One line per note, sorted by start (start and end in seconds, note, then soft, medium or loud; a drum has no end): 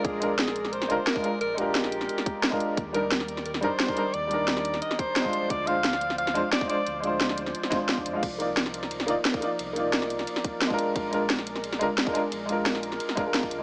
0.00 0.18 G#3 medium
0.00 2.75 G#3 medium
0.00 0.19 D4 medium
0.00 0.20 F4 medium
0.00 0.21 A#4 loud
0.00 2.73 A#4 medium
0.00 2.73 D5 medium
0.04 0.29 A#1 loud
0.04 0.38 G#4 loud
0.04 kick loud
0.04 closed hi-hat medium
0.20 0.29 G#3 medium
0.20 0.29 D4 medium
0.20 0.30 F4 medium
0.20 0.30 A#4 loud
0.20 closed hi-hat loud
0.31 0.72 A#1 loud
0.39 0.74 G#4 loud
0.39 snare loud
0.39 closed hi-hat medium
0.48 snare medium
0.56 closed hi-hat medium
0.65 snare soft
0.73 0.91 A#1 loud
0.73 1.08 C5 loud
0.73 closed hi-hat medium
0.82 snare soft
0.88 0.98 D2 loud
0.88 0.94 G#3 loud
0.88 0.94 D4 medium
0.88 0.95 F4 medium
0.88 0.96 A#4 loud
0.88 closed hi-hat loud
1.07 1.40 A#4 loud
1.07 snare loud
1.07 closed hi-hat medium
1.14 1.21 G#3 medium
1.14 1.22 D4 medium
1.14 1.22 F4 medium
1.14 1.23 A#4 medium
1.14 kick loud
1.22 1.28 G#3 loud
1.22 1.29 D4 medium
1.22 1.29 F4 medium
1.22 1.30 A#4 loud
1.22 closed hi-hat medium
1.41 1.65 A#1 loud
1.41 1.59 A#4 loud
1.41 closed hi-hat medium
1.55 2.48 G#3 medium
1.55 2.49 D4 medium
1.55 2.60 G4 medium
1.55 closed hi-hat medium
1.59 2.50 F4 medium
1.59 2.52 A#4 loud
1.67 2.08 A#1 loud
1.75 snare loud
1.75 closed hi-hat medium
1.84 snare soft
1.92 closed hi-hat medium
2.01 snare soft
2.09 closed hi-hat medium
2.18 snare soft
2.26 kick loud
2.26 closed hi-hat medium
2.43 snare loud
2.43 closed hi-hat medium
2.50 2.76 G#3 medium
2.50 2.76 D4 medium
2.50 2.77 F4 medium
2.50 2.77 A#4 loud
2.50 kick medium
2.60 closed hi-hat medium
2.77 3.02 D#2 loud
2.77 5.30 D#3 medium
2.77 5.31 G3 medium
2.77 5.30 D5 medium
2.77 kick loud
2.77 closed hi-hat medium
2.93 3.01 G3 medium
2.93 3.02 D4 medium
2.93 3.02 D#4 medium
2.93 3.42 A#4 medium
2.93 3.03 A#4 loud
2.93 closed hi-hat medium
3.03 3.44 D#2 loud
3.11 snare loud
3.11 closed hi-hat medium
3.20 snare soft
3.28 closed hi-hat medium
3.37 snare soft
3.46 3.64 D#2 loud
3.46 3.64 A#4 medium
3.46 closed hi-hat medium
3.54 snare soft
3.61 3.71 G2 loud
3.61 3.67 G3 loud
3.61 3.67 D4 medium
3.61 3.68 D#4 loud
3.61 3.68 A#4 loud
3.61 4.15 C5 medium
3.61 closed hi-hat medium
3.80 snare loud
3.80 closed hi-hat medium
3.87 3.94 G3 medium
3.87 3.94 D4 medium
3.87 3.95 D#4 medium
3.87 3.96 A#4 medium
3.87 kick loud
3.95 4.01 G3 loud
3.95 4.01 D4 medium
3.95 4.02 D#4 medium
3.95 4.02 A#4 loud
3.95 closed hi-hat medium
4.14 4.38 D#2 loud
4.14 4.81 D5 loud
4.14 closed hi-hat medium
4.27 5.21 G3 medium
4.27 5.22 D4 medium
4.27 closed hi-hat loud
4.32 5.23 D#4 medium
4.32 5.24 A#4 loud
4.40 4.81 D#2 loud
4.48 snare loud
4.48 closed hi-hat medium
4.57 snare soft
4.65 closed hi-hat loud
4.74 snare soft
4.82 5.01 D#5 loud
4.82 closed hi-hat medium
4.91 snare soft
4.99 5.52 C5 loud
4.99 kick loud
4.99 closed hi-hat medium
5.16 snare loud
5.16 closed hi-hat medium
5.22 5.64 G#3 medium
5.22 5.65 D4 medium
5.22 kick medium
5.26 5.66 F4 medium
5.26 5.67 C5 loud
5.33 10.75 F3 medium
5.33 8.20 C5 medium
5.33 13.63 D5 medium
5.33 closed hi-hat loud
5.50 5.75 D2 loud
5.50 5.69 D5 loud
5.50 kick loud
5.50 closed hi-hat medium
5.66 5.74 G#3 medium
5.66 5.75 D4 medium
5.66 5.75 F4 medium
5.66 5.76 C5 loud
5.66 6.18 F5 loud
5.66 closed hi-hat loud
5.76 6.17 D2 loud
5.84 snare loud
5.84 closed hi-hat medium
5.93 snare soft
6.01 closed hi-hat loud
6.10 snare soft
6.18 6.37 D2 medium
6.18 6.50 F5 loud
6.18 closed hi-hat medium
6.27 snare soft
6.34 6.43 F2 loud
6.34 6.39 G#3 loud
6.34 6.40 D4 loud
6.34 6.40 F4 loud
6.34 6.41 C5 loud
6.34 closed hi-hat loud
6.52 6.68 D5 loud
6.52 snare loud
6.52 closed hi-hat medium
6.60 6.66 G#3 medium
6.60 6.67 D4 medium
6.60 6.68 F4 medium
6.60 6.68 C5 medium
6.60 kick loud
6.68 6.73 G#3 loud
6.68 6.74 D4 medium
6.68 6.75 F4 medium
6.68 6.75 C5 loud
6.68 7.01 D5 loud
6.68 closed hi-hat medium
6.86 7.11 D2 loud
6.86 closed hi-hat medium
7.00 7.68 G#3 medium
7.00 7.70 D4 medium
7.00 closed hi-hat loud
7.05 7.71 F4 medium
7.05 7.72 C5 loud
7.12 7.53 D2 loud
7.21 snare loud
7.21 closed hi-hat medium
7.29 snare soft
7.38 closed hi-hat medium
7.46 snare soft
7.55 closed hi-hat medium
7.63 snare soft
7.70 8.07 G#1 medium
7.70 7.76 G#3 loud
7.70 7.76 D4 medium
7.70 7.77 F4 medium
7.70 7.77 C5 loud
7.70 kick loud
7.70 snare soft
7.70 closed hi-hat loud
7.79 8.12 G#3 medium
7.79 8.12 D4 medium
7.79 8.13 F4 medium
7.79 8.13 C5 medium
7.89 snare loud
7.89 closed hi-hat medium
7.98 kick medium
8.06 8.16 G2 medium
8.06 closed hi-hat loud
8.13 8.22 G#1 medium
8.13 8.18 G#3 medium
8.13 8.19 D4 medium
8.13 8.19 F4 medium
8.13 8.20 F5 medium
8.23 8.47 C2 loud
8.23 10.76 D#4 medium
8.23 13.63 A#4 medium
8.23 kick loud
8.23 closed hi-hat medium
8.23 ride bell medium
8.23 crash medium
8.38 8.47 A#3 medium
8.38 8.47 D#4 medium
8.38 8.48 F4 medium
8.38 8.49 D5 loud
8.38 closed hi-hat loud
8.38 ride bell medium
8.49 8.90 C2 loud
8.57 snare loud
8.57 closed hi-hat medium
8.57 ride bell medium
8.66 snare soft
8.74 closed hi-hat loud
8.74 ride bell medium
8.83 snare soft
8.91 9.10 C2 loud
8.91 closed hi-hat medium
8.91 ride bell medium
9.00 snare medium
9.06 9.16 D#2 loud
9.06 9.12 A#3 loud
9.06 9.13 D#4 medium
9.06 9.13 F4 loud
9.06 9.14 D5 loud
9.06 closed hi-hat loud
9.06 ride bell medium
9.25 snare loud
9.25 closed hi-hat medium
9.25 ride bell medium
9.32 9.39 A#3 medium
9.32 9.40 D#4 medium
9.32 9.41 F4 medium
9.32 9.41 D5 medium
9.32 kick loud
9.41 9.46 A#3 medium
9.41 9.47 D#4 medium
9.41 9.47 F4 medium
9.41 9.48 D5 loud
9.41 closed hi-hat loud
9.41 ride bell medium
9.59 9.84 C2 loud
9.59 closed hi-hat medium
9.59 ride bell medium
9.73 10.67 A#3 medium
9.73 10.68 D#4 medium
9.73 closed hi-hat loud
9.73 ride bell medium
9.77 10.69 F4 medium
9.77 10.70 D5 medium
9.85 10.26 C2 loud
9.93 snare loud
9.93 closed hi-hat medium
9.93 ride bell medium
10.02 snare soft
10.10 closed hi-hat loud
10.10 ride bell medium
10.19 snare soft
10.27 closed hi-hat medium
10.27 ride bell medium
10.36 snare soft
10.44 kick loud
10.44 closed hi-hat loud
10.44 ride bell medium
10.61 snare loud
10.61 closed hi-hat medium
10.61 ride bell medium
10.67 11.09 G#3 loud
10.67 11.10 D4 medium
10.67 kick medium
10.71 11.11 F4 medium
10.71 11.12 A#4 loud
10.79 13.63 G#3 medium
10.79 closed hi-hat loud
10.79 ride bell medium
10.96 11.20 A#1 loud
10.96 kick loud
10.96 closed hi-hat medium
10.96 ride bell medium
11.11 11.20 G#3 medium
11.11 11.20 D4 medium
11.11 11.21 F4 medium
11.11 11.21 A#4 loud
11.11 closed hi-hat loud
11.11 ride bell medium
11.21 11.62 A#1 loud
11.30 snare loud
11.30 closed hi-hat medium
11.30 ride bell medium
11.39 snare soft
11.47 closed hi-hat medium
11.47 ride bell medium
11.56 snare soft
11.64 11.82 A#1 loud
11.64 closed hi-hat medium
11.64 ride bell medium
11.73 snare soft
11.79 11.89 D2 loud
11.79 11.85 G#3 loud
11.79 11.85 D4 medium
11.79 11.86 F4 medium
11.79 11.86 A#4 loud
11.79 closed hi-hat medium
11.79 ride bell medium
11.98 snare loud
11.98 closed hi-hat medium
11.98 ride bell medium
12.05 12.12 G#3 medium
12.05 12.13 D4 medium
12.05 12.13 F4 medium
12.05 12.14 A#4 medium
12.05 kick loud
12.13 12.19 G#3 loud
12.13 12.19 D4 medium
12.13 12.20 F4 medium
12.13 12.21 A#4 loud
12.13 closed hi-hat medium
12.13 ride bell medium
12.32 12.56 A#1 loud
12.32 closed hi-hat medium
12.32 ride bell medium
12.46 13.14 G#3 medium
12.46 13.15 D4 medium
12.46 closed hi-hat medium
12.46 ride bell medium
12.50 13.16 F4 medium
12.50 13.17 A#4 medium
12.58 12.99 A#1 loud
12.66 snare loud
12.66 closed hi-hat medium
12.66 ride bell medium
12.75 snare soft
12.83 closed hi-hat medium
12.83 ride bell medium
12.92 snare soft
13.00 closed hi-hat medium
13.00 ride bell medium
13.09 snare soft
13.15 13.53 F1 medium
13.15 13.21 G#3 loud
13.15 13.22 D4 medium
13.15 13.22 F4 medium
13.15 13.23 A#4 loud
13.15 kick loud
13.15 closed hi-hat medium
13.15 ride bell medium
13.24 13.57 G#3 medium
13.24 13.58 F4 medium
13.24 13.59 A#4 medium
13.34 snare loud
13.34 closed hi-hat medium
13.34 ride bell medium
13.43 kick medium
13.51 13.61 D2 medium
13.51 closed hi-hat medium
13.51 ride bell medium
13.58 13.63 G#3 medium
13.58 13.63 D4 medium